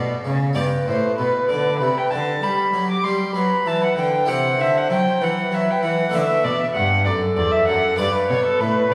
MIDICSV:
0, 0, Header, 1, 5, 480
1, 0, Start_track
1, 0, Key_signature, 1, "major"
1, 0, Tempo, 623701
1, 422, Time_signature, 12, 3, 24, 8
1, 3777, Tempo, 616016
1, 6919, End_track
2, 0, Start_track
2, 0, Title_t, "Violin"
2, 0, Program_c, 0, 40
2, 424, Note_on_c, 0, 74, 63
2, 486, Note_off_c, 0, 74, 0
2, 667, Note_on_c, 0, 72, 61
2, 902, Note_off_c, 0, 72, 0
2, 911, Note_on_c, 0, 71, 59
2, 1144, Note_off_c, 0, 71, 0
2, 1148, Note_on_c, 0, 74, 59
2, 1374, Note_off_c, 0, 74, 0
2, 1379, Note_on_c, 0, 83, 68
2, 1522, Note_on_c, 0, 79, 62
2, 1534, Note_off_c, 0, 83, 0
2, 1625, Note_on_c, 0, 81, 71
2, 1637, Note_off_c, 0, 79, 0
2, 1872, Note_on_c, 0, 83, 73
2, 1883, Note_off_c, 0, 81, 0
2, 2224, Note_off_c, 0, 83, 0
2, 2238, Note_on_c, 0, 86, 60
2, 2343, Note_on_c, 0, 84, 69
2, 2354, Note_off_c, 0, 86, 0
2, 2580, Note_off_c, 0, 84, 0
2, 2584, Note_on_c, 0, 83, 70
2, 2826, Note_on_c, 0, 81, 69
2, 2837, Note_off_c, 0, 83, 0
2, 2942, Note_off_c, 0, 81, 0
2, 2957, Note_on_c, 0, 78, 59
2, 3062, Note_off_c, 0, 78, 0
2, 3066, Note_on_c, 0, 79, 64
2, 3301, Note_on_c, 0, 78, 77
2, 3312, Note_off_c, 0, 79, 0
2, 3547, Note_on_c, 0, 76, 69
2, 3558, Note_off_c, 0, 78, 0
2, 3676, Note_on_c, 0, 78, 66
2, 3687, Note_off_c, 0, 76, 0
2, 3783, Note_off_c, 0, 78, 0
2, 3787, Note_on_c, 0, 79, 68
2, 4031, Note_on_c, 0, 78, 60
2, 4043, Note_off_c, 0, 79, 0
2, 4271, Note_on_c, 0, 76, 66
2, 4282, Note_off_c, 0, 78, 0
2, 4399, Note_on_c, 0, 79, 68
2, 4411, Note_off_c, 0, 76, 0
2, 4497, Note_off_c, 0, 79, 0
2, 4501, Note_on_c, 0, 78, 66
2, 4743, Note_on_c, 0, 76, 80
2, 4755, Note_off_c, 0, 78, 0
2, 4972, Note_on_c, 0, 74, 71
2, 4984, Note_off_c, 0, 76, 0
2, 5094, Note_off_c, 0, 74, 0
2, 5100, Note_on_c, 0, 76, 62
2, 5147, Note_off_c, 0, 76, 0
2, 5205, Note_on_c, 0, 78, 77
2, 5445, Note_off_c, 0, 78, 0
2, 5450, Note_on_c, 0, 74, 71
2, 5513, Note_off_c, 0, 74, 0
2, 5693, Note_on_c, 0, 74, 67
2, 5809, Note_on_c, 0, 76, 68
2, 5821, Note_off_c, 0, 74, 0
2, 5933, Note_off_c, 0, 76, 0
2, 5938, Note_on_c, 0, 78, 78
2, 6172, Note_off_c, 0, 78, 0
2, 6176, Note_on_c, 0, 74, 89
2, 6294, Note_off_c, 0, 74, 0
2, 6301, Note_on_c, 0, 71, 63
2, 6416, Note_off_c, 0, 71, 0
2, 6420, Note_on_c, 0, 73, 72
2, 6536, Note_off_c, 0, 73, 0
2, 6542, Note_on_c, 0, 69, 73
2, 6657, Note_on_c, 0, 71, 78
2, 6669, Note_off_c, 0, 69, 0
2, 6909, Note_off_c, 0, 71, 0
2, 6919, End_track
3, 0, Start_track
3, 0, Title_t, "Flute"
3, 0, Program_c, 1, 73
3, 0, Note_on_c, 1, 74, 74
3, 143, Note_off_c, 1, 74, 0
3, 423, Note_on_c, 1, 71, 59
3, 1831, Note_off_c, 1, 71, 0
3, 1862, Note_on_c, 1, 67, 53
3, 2565, Note_off_c, 1, 67, 0
3, 2580, Note_on_c, 1, 71, 60
3, 3284, Note_off_c, 1, 71, 0
3, 3297, Note_on_c, 1, 72, 55
3, 4017, Note_on_c, 1, 71, 64
3, 4029, Note_off_c, 1, 72, 0
3, 5241, Note_off_c, 1, 71, 0
3, 5444, Note_on_c, 1, 69, 65
3, 6173, Note_on_c, 1, 71, 71
3, 6184, Note_off_c, 1, 69, 0
3, 6919, Note_off_c, 1, 71, 0
3, 6919, End_track
4, 0, Start_track
4, 0, Title_t, "Harpsichord"
4, 0, Program_c, 2, 6
4, 0, Note_on_c, 2, 47, 52
4, 0, Note_on_c, 2, 69, 52
4, 159, Note_off_c, 2, 47, 0
4, 190, Note_on_c, 2, 49, 55
4, 388, Note_off_c, 2, 69, 0
4, 403, Note_off_c, 2, 49, 0
4, 410, Note_on_c, 2, 59, 37
4, 420, Note_on_c, 2, 67, 35
4, 432, Note_on_c, 2, 43, 41
4, 644, Note_off_c, 2, 43, 0
4, 676, Note_on_c, 2, 45, 38
4, 887, Note_off_c, 2, 45, 0
4, 911, Note_on_c, 2, 47, 41
4, 1125, Note_off_c, 2, 47, 0
4, 1147, Note_on_c, 2, 50, 42
4, 1362, Note_off_c, 2, 50, 0
4, 1391, Note_on_c, 2, 48, 36
4, 1603, Note_off_c, 2, 48, 0
4, 1624, Note_on_c, 2, 50, 46
4, 1838, Note_off_c, 2, 50, 0
4, 1863, Note_on_c, 2, 55, 37
4, 2077, Note_off_c, 2, 55, 0
4, 2105, Note_on_c, 2, 54, 41
4, 2318, Note_off_c, 2, 54, 0
4, 2346, Note_on_c, 2, 55, 44
4, 2558, Note_off_c, 2, 55, 0
4, 2574, Note_on_c, 2, 54, 42
4, 2791, Note_off_c, 2, 54, 0
4, 2819, Note_on_c, 2, 52, 41
4, 3034, Note_off_c, 2, 52, 0
4, 3054, Note_on_c, 2, 50, 47
4, 3261, Note_off_c, 2, 59, 0
4, 3266, Note_off_c, 2, 67, 0
4, 3271, Note_off_c, 2, 50, 0
4, 3275, Note_on_c, 2, 64, 38
4, 3287, Note_on_c, 2, 67, 41
4, 3297, Note_on_c, 2, 48, 40
4, 3513, Note_off_c, 2, 48, 0
4, 3535, Note_on_c, 2, 50, 42
4, 3751, Note_off_c, 2, 50, 0
4, 3772, Note_on_c, 2, 54, 38
4, 3990, Note_off_c, 2, 54, 0
4, 4015, Note_on_c, 2, 52, 45
4, 4231, Note_off_c, 2, 52, 0
4, 4251, Note_on_c, 2, 54, 44
4, 4469, Note_off_c, 2, 54, 0
4, 4494, Note_on_c, 2, 52, 47
4, 4694, Note_off_c, 2, 64, 0
4, 4700, Note_off_c, 2, 67, 0
4, 4700, Note_on_c, 2, 57, 39
4, 4711, Note_off_c, 2, 52, 0
4, 4712, Note_on_c, 2, 62, 35
4, 4726, Note_on_c, 2, 74, 38
4, 4737, Note_on_c, 2, 50, 44
4, 4951, Note_off_c, 2, 57, 0
4, 4953, Note_off_c, 2, 50, 0
4, 4975, Note_on_c, 2, 47, 43
4, 5191, Note_off_c, 2, 47, 0
4, 5212, Note_on_c, 2, 43, 48
4, 5429, Note_off_c, 2, 43, 0
4, 5455, Note_on_c, 2, 42, 47
4, 5672, Note_off_c, 2, 42, 0
4, 5694, Note_on_c, 2, 40, 48
4, 5911, Note_off_c, 2, 40, 0
4, 5935, Note_on_c, 2, 42, 44
4, 6133, Note_off_c, 2, 62, 0
4, 6140, Note_off_c, 2, 74, 0
4, 6152, Note_off_c, 2, 42, 0
4, 6154, Note_on_c, 2, 62, 41
4, 6165, Note_on_c, 2, 71, 42
4, 6178, Note_on_c, 2, 43, 48
4, 6393, Note_off_c, 2, 43, 0
4, 6420, Note_on_c, 2, 47, 46
4, 6634, Note_off_c, 2, 47, 0
4, 6662, Note_on_c, 2, 45, 49
4, 6875, Note_off_c, 2, 45, 0
4, 6919, Note_off_c, 2, 62, 0
4, 6919, Note_off_c, 2, 71, 0
4, 6919, End_track
5, 0, Start_track
5, 0, Title_t, "Cello"
5, 0, Program_c, 3, 42
5, 0, Note_on_c, 3, 47, 55
5, 175, Note_off_c, 3, 47, 0
5, 186, Note_on_c, 3, 49, 56
5, 420, Note_off_c, 3, 49, 0
5, 425, Note_on_c, 3, 43, 49
5, 487, Note_off_c, 3, 43, 0
5, 667, Note_on_c, 3, 45, 51
5, 902, Note_off_c, 3, 45, 0
5, 916, Note_on_c, 3, 47, 43
5, 978, Note_off_c, 3, 47, 0
5, 1150, Note_on_c, 3, 50, 46
5, 1383, Note_off_c, 3, 50, 0
5, 1390, Note_on_c, 3, 48, 43
5, 1452, Note_off_c, 3, 48, 0
5, 1633, Note_on_c, 3, 50, 53
5, 1862, Note_off_c, 3, 50, 0
5, 1867, Note_on_c, 3, 55, 47
5, 2098, Note_off_c, 3, 55, 0
5, 2106, Note_on_c, 3, 54, 42
5, 2337, Note_off_c, 3, 54, 0
5, 2347, Note_on_c, 3, 55, 48
5, 2578, Note_off_c, 3, 55, 0
5, 2583, Note_on_c, 3, 54, 51
5, 2816, Note_off_c, 3, 54, 0
5, 2820, Note_on_c, 3, 52, 48
5, 3052, Note_off_c, 3, 52, 0
5, 3057, Note_on_c, 3, 50, 42
5, 3293, Note_off_c, 3, 50, 0
5, 3300, Note_on_c, 3, 48, 54
5, 3534, Note_off_c, 3, 48, 0
5, 3538, Note_on_c, 3, 50, 53
5, 3771, Note_on_c, 3, 54, 50
5, 3783, Note_off_c, 3, 50, 0
5, 4010, Note_on_c, 3, 52, 52
5, 4021, Note_off_c, 3, 54, 0
5, 4242, Note_off_c, 3, 52, 0
5, 4247, Note_on_c, 3, 54, 45
5, 4487, Note_off_c, 3, 54, 0
5, 4494, Note_on_c, 3, 52, 51
5, 4731, Note_off_c, 3, 52, 0
5, 4739, Note_on_c, 3, 50, 51
5, 4801, Note_off_c, 3, 50, 0
5, 4977, Note_on_c, 3, 47, 46
5, 5040, Note_off_c, 3, 47, 0
5, 5219, Note_on_c, 3, 43, 55
5, 5463, Note_on_c, 3, 42, 59
5, 5475, Note_off_c, 3, 43, 0
5, 5693, Note_off_c, 3, 42, 0
5, 5698, Note_on_c, 3, 40, 54
5, 5760, Note_off_c, 3, 40, 0
5, 5939, Note_on_c, 3, 42, 54
5, 6173, Note_off_c, 3, 42, 0
5, 6176, Note_on_c, 3, 43, 57
5, 6239, Note_off_c, 3, 43, 0
5, 6421, Note_on_c, 3, 47, 62
5, 6484, Note_off_c, 3, 47, 0
5, 6655, Note_on_c, 3, 45, 61
5, 6890, Note_off_c, 3, 45, 0
5, 6894, Note_on_c, 3, 47, 66
5, 6919, Note_off_c, 3, 47, 0
5, 6919, End_track
0, 0, End_of_file